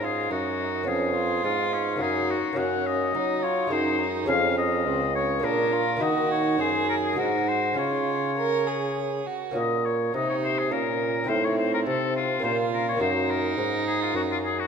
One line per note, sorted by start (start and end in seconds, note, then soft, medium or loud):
0.00 0.26 G#2 soft
0.00 0.29 G#2 soft
0.00 0.32 F4 medium
0.00 0.83 F#4 soft
0.04 0.31 G#4 medium
0.31 0.89 F#2 medium
0.31 0.83 F#2 soft
0.31 0.87 D#4 soft
0.31 0.89 F#4 medium
0.83 1.95 B3 soft
0.83 1.96 C#4 soft
0.83 1.15 C#4 medium
0.87 1.44 F2 medium
0.87 1.40 F2 soft
0.87 1.43 G#4 medium
1.16 1.99 F4 medium
1.44 1.97 G#2 soft
1.44 2.02 G#2 medium
1.44 1.75 F4 medium
1.73 2.03 C#4 medium
1.96 2.52 A#3 soft
1.96 2.53 C#4 soft
1.96 2.55 F#4 soft
2.00 2.34 F#2 soft
2.00 2.37 F#2 soft
2.00 2.56 D#4 medium
2.00 2.32 G#4 medium
2.30 2.59 F#4 medium
2.53 3.65 A#3 soft
2.53 3.66 C#4 soft
2.53 3.67 F#4 soft
2.57 3.10 F#2 soft
2.57 3.10 F#2 medium
2.57 3.17 C#4 medium
2.57 2.88 F#5 medium
2.86 3.44 D#5 medium
3.14 3.67 F#3 soft
3.14 3.70 F#3 medium
3.14 3.45 D#4 medium
3.43 3.74 F4 medium
3.43 3.73 C#5 medium
3.67 4.27 F#2 medium
3.67 4.23 G#3 soft
3.67 4.25 D#4 soft
3.67 4.26 G#4 soft
3.71 4.24 F#2 soft
3.71 4.00 D#4 medium
3.71 4.08 C5 medium
4.01 4.30 D#4 medium
4.24 5.38 G#3 soft
4.24 5.39 C#4 soft
4.24 5.39 G#4 soft
4.28 4.88 F2 medium
4.28 4.82 F2 soft
4.28 4.89 C#4 medium
4.28 4.55 F5 medium
4.57 5.14 D#5 medium
4.86 5.43 C#2 medium
4.86 5.15 C4 medium
5.15 5.44 C#4 soft
5.15 5.46 C#5 medium
5.40 6.00 A#2 medium
5.40 5.95 A#3 soft
5.40 5.98 D4 soft
5.40 5.98 G#4 soft
5.44 5.97 A#2 soft
5.44 5.74 D4 medium
5.44 6.02 A#4 medium
5.73 6.03 F4 medium
5.97 7.12 A#3 soft
5.97 7.12 D#4 soft
5.97 7.13 F#4 soft
6.01 6.60 D#3 medium
6.01 6.55 D#3 soft
6.01 6.62 F#4 medium
6.01 6.30 D#5 medium
6.31 6.61 C#5 medium
6.59 7.13 F#2 soft
6.59 7.19 F#2 medium
6.59 7.18 G#4 medium
6.59 6.88 C5 medium
6.89 6.95 A#4 medium
7.05 7.18 G#4 medium
7.13 7.72 G#3 soft
7.13 7.74 D#4 soft
7.13 7.75 F#4 soft
7.18 7.73 G#2 soft
7.18 7.76 G#2 medium
7.18 7.79 F#4 medium
7.18 7.50 A#4 medium
7.48 7.78 C5 medium
7.73 9.23 C#3 medium
7.73 9.50 G#3 soft
7.73 9.50 C#4 soft
7.73 9.51 F4 soft
7.77 9.22 C#3 soft
7.77 8.31 F4 medium
7.77 8.95 C#5 medium
8.38 8.69 A#4 medium
8.67 9.28 G#4 medium
9.27 9.56 F#4 medium
9.51 11.22 A#3 soft
9.51 11.23 C#4 soft
9.51 11.24 F4 soft
9.55 10.10 A#2 soft
9.55 10.10 A#2 medium
9.55 9.87 D#5 medium
9.85 10.13 C#5 medium
10.14 10.67 C3 soft
10.14 10.73 C3 soft
10.14 10.73 D#4 medium
10.14 10.28 D#5 medium
10.29 10.36 C#5 medium
10.44 10.60 C5 medium
10.59 10.73 G#4 medium
10.71 11.28 A#2 soft
10.71 11.25 A#2 soft
10.71 11.28 C#4 medium
10.71 11.30 A#4 medium
11.24 12.38 C4 soft
11.24 12.38 D#4 soft
11.24 12.39 F4 soft
11.28 11.82 A2 soft
11.28 11.85 A2 medium
11.28 12.45 C4 medium
11.28 11.46 C5 medium
11.44 11.57 C#5 medium
11.58 11.72 C5 medium
11.74 11.80 A#4 medium
11.86 12.40 C3 soft
11.86 12.42 C3 soft
11.86 12.15 A4 medium
12.16 12.43 F4 medium
12.39 13.00 A#2 medium
12.39 12.95 A#3 soft
12.39 12.97 C#4 soft
12.39 12.99 F4 soft
12.39 13.02 F4 medium
12.44 12.97 A#2 soft
12.44 12.57 C5 medium
12.73 12.87 A#4 medium
12.88 13.00 C#5 medium
12.97 13.54 A#3 soft
12.97 13.55 C#4 soft
12.97 14.67 F#4 soft
13.01 13.57 F#2 medium
13.01 13.54 F#2 soft
13.01 14.67 D#4 medium
13.01 13.32 C5 medium
13.30 13.86 A#4 medium
13.58 14.13 G#2 medium
13.58 14.11 G#2 soft
13.87 14.00 G#4 medium
14.01 14.15 F4 medium
14.14 14.67 F#2 medium
14.14 14.67 F#2 soft
14.14 14.22 F#4 medium
14.31 14.37 F4 medium
14.44 14.61 G#4 medium
14.59 14.67 F#4 medium